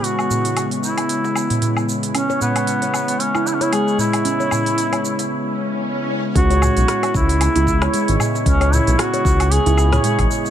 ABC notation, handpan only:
X:1
M:4/4
L:1/16
Q:"Swing 16ths" 1/4=114
K:C#m
V:1 name="Handpan"
z16 | C c4 c z3 E2 c G,4 | C c4 c z8 z2 | C c4 c z3 E2 c G,4 |
C c4 c z3 E2 c G,4 |]